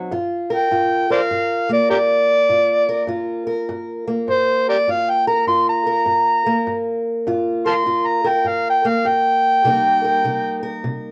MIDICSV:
0, 0, Header, 1, 3, 480
1, 0, Start_track
1, 0, Key_signature, -2, "minor"
1, 0, Tempo, 595829
1, 83, Time_signature, 4, 2, 24, 8
1, 8955, End_track
2, 0, Start_track
2, 0, Title_t, "Harmonica"
2, 0, Program_c, 0, 22
2, 431, Note_on_c, 0, 79, 80
2, 884, Note_off_c, 0, 79, 0
2, 897, Note_on_c, 0, 72, 59
2, 897, Note_on_c, 0, 74, 59
2, 897, Note_on_c, 0, 77, 85
2, 961, Note_off_c, 0, 74, 0
2, 967, Note_off_c, 0, 72, 0
2, 1357, Note_off_c, 0, 77, 0
2, 1390, Note_on_c, 0, 74, 74
2, 1527, Note_off_c, 0, 74, 0
2, 1532, Note_on_c, 0, 67, 65
2, 1532, Note_on_c, 0, 70, 65
2, 1532, Note_on_c, 0, 74, 93
2, 1591, Note_off_c, 0, 70, 0
2, 1592, Note_off_c, 0, 67, 0
2, 2460, Note_off_c, 0, 74, 0
2, 3461, Note_on_c, 0, 72, 87
2, 3764, Note_off_c, 0, 72, 0
2, 3777, Note_on_c, 0, 67, 55
2, 3777, Note_on_c, 0, 70, 55
2, 3777, Note_on_c, 0, 74, 79
2, 3838, Note_off_c, 0, 70, 0
2, 3847, Note_off_c, 0, 67, 0
2, 3952, Note_on_c, 0, 77, 84
2, 3964, Note_off_c, 0, 74, 0
2, 4106, Note_on_c, 0, 79, 80
2, 4118, Note_off_c, 0, 77, 0
2, 4243, Note_off_c, 0, 79, 0
2, 4248, Note_on_c, 0, 82, 79
2, 4402, Note_off_c, 0, 82, 0
2, 4412, Note_on_c, 0, 84, 86
2, 4564, Note_off_c, 0, 84, 0
2, 4586, Note_on_c, 0, 82, 90
2, 5507, Note_off_c, 0, 82, 0
2, 6175, Note_on_c, 0, 77, 60
2, 6175, Note_on_c, 0, 81, 60
2, 6175, Note_on_c, 0, 84, 86
2, 6232, Note_off_c, 0, 81, 0
2, 6241, Note_off_c, 0, 77, 0
2, 6498, Note_on_c, 0, 82, 84
2, 6510, Note_off_c, 0, 84, 0
2, 6676, Note_on_c, 0, 79, 73
2, 6688, Note_off_c, 0, 82, 0
2, 6826, Note_on_c, 0, 77, 79
2, 6838, Note_off_c, 0, 79, 0
2, 6971, Note_off_c, 0, 77, 0
2, 7005, Note_on_c, 0, 79, 85
2, 7155, Note_on_c, 0, 77, 86
2, 7167, Note_off_c, 0, 79, 0
2, 7312, Note_on_c, 0, 79, 98
2, 7324, Note_off_c, 0, 77, 0
2, 8705, Note_off_c, 0, 79, 0
2, 8955, End_track
3, 0, Start_track
3, 0, Title_t, "Steel-string acoustic guitar"
3, 0, Program_c, 1, 25
3, 0, Note_on_c, 1, 54, 58
3, 89, Note_off_c, 1, 54, 0
3, 91, Note_on_c, 1, 43, 67
3, 96, Note_on_c, 1, 65, 56
3, 403, Note_on_c, 1, 70, 61
3, 534, Note_off_c, 1, 43, 0
3, 573, Note_on_c, 1, 43, 66
3, 574, Note_off_c, 1, 65, 0
3, 578, Note_on_c, 1, 65, 56
3, 885, Note_off_c, 1, 70, 0
3, 888, Note_on_c, 1, 70, 61
3, 1015, Note_off_c, 1, 43, 0
3, 1054, Note_on_c, 1, 43, 70
3, 1363, Note_on_c, 1, 58, 59
3, 1495, Note_off_c, 1, 43, 0
3, 1533, Note_on_c, 1, 43, 68
3, 1975, Note_off_c, 1, 43, 0
3, 2007, Note_on_c, 1, 43, 67
3, 2008, Note_off_c, 1, 65, 0
3, 2012, Note_on_c, 1, 65, 60
3, 2323, Note_off_c, 1, 70, 0
3, 2326, Note_on_c, 1, 70, 62
3, 2453, Note_off_c, 1, 43, 0
3, 2475, Note_on_c, 1, 43, 70
3, 2482, Note_off_c, 1, 65, 0
3, 2485, Note_on_c, 1, 65, 56
3, 2790, Note_off_c, 1, 70, 0
3, 2793, Note_on_c, 1, 70, 62
3, 2926, Note_off_c, 1, 43, 0
3, 2971, Note_on_c, 1, 43, 76
3, 3280, Note_off_c, 1, 58, 0
3, 3283, Note_on_c, 1, 58, 58
3, 3415, Note_off_c, 1, 43, 0
3, 3447, Note_on_c, 1, 43, 69
3, 3892, Note_off_c, 1, 43, 0
3, 3931, Note_on_c, 1, 43, 72
3, 3936, Note_off_c, 1, 65, 0
3, 3940, Note_on_c, 1, 65, 60
3, 4245, Note_off_c, 1, 70, 0
3, 4248, Note_on_c, 1, 70, 64
3, 4374, Note_off_c, 1, 43, 0
3, 4408, Note_on_c, 1, 43, 70
3, 4413, Note_off_c, 1, 65, 0
3, 4416, Note_on_c, 1, 65, 57
3, 4723, Note_off_c, 1, 70, 0
3, 4726, Note_on_c, 1, 70, 61
3, 4853, Note_off_c, 1, 43, 0
3, 4880, Note_on_c, 1, 43, 72
3, 5204, Note_off_c, 1, 58, 0
3, 5207, Note_on_c, 1, 58, 60
3, 5329, Note_off_c, 1, 43, 0
3, 5372, Note_on_c, 1, 43, 70
3, 5815, Note_off_c, 1, 43, 0
3, 5830, Note_off_c, 1, 65, 0
3, 5855, Note_on_c, 1, 43, 69
3, 5860, Note_on_c, 1, 65, 60
3, 6165, Note_off_c, 1, 70, 0
3, 6168, Note_on_c, 1, 70, 62
3, 6296, Note_off_c, 1, 43, 0
3, 6327, Note_off_c, 1, 65, 0
3, 6331, Note_on_c, 1, 43, 67
3, 6337, Note_on_c, 1, 65, 58
3, 6638, Note_off_c, 1, 70, 0
3, 6641, Note_on_c, 1, 70, 65
3, 6773, Note_off_c, 1, 43, 0
3, 6804, Note_on_c, 1, 43, 70
3, 7124, Note_off_c, 1, 58, 0
3, 7127, Note_on_c, 1, 58, 59
3, 7249, Note_off_c, 1, 43, 0
3, 7291, Note_on_c, 1, 43, 72
3, 7733, Note_off_c, 1, 43, 0
3, 7749, Note_off_c, 1, 65, 0
3, 7768, Note_on_c, 1, 48, 69
3, 7773, Note_off_c, 1, 58, 0
3, 7773, Note_on_c, 1, 55, 54
3, 7776, Note_on_c, 1, 58, 57
3, 7788, Note_on_c, 1, 63, 59
3, 7790, Note_off_c, 1, 70, 0
3, 7793, Note_on_c, 1, 70, 63
3, 8089, Note_off_c, 1, 70, 0
3, 8092, Note_on_c, 1, 70, 59
3, 8211, Note_off_c, 1, 48, 0
3, 8253, Note_on_c, 1, 48, 69
3, 8254, Note_off_c, 1, 63, 0
3, 8257, Note_on_c, 1, 63, 57
3, 8559, Note_off_c, 1, 70, 0
3, 8562, Note_on_c, 1, 70, 62
3, 8693, Note_off_c, 1, 48, 0
3, 8733, Note_on_c, 1, 48, 72
3, 8955, Note_off_c, 1, 48, 0
3, 8955, Note_off_c, 1, 55, 0
3, 8955, Note_off_c, 1, 58, 0
3, 8955, Note_off_c, 1, 63, 0
3, 8955, Note_off_c, 1, 70, 0
3, 8955, End_track
0, 0, End_of_file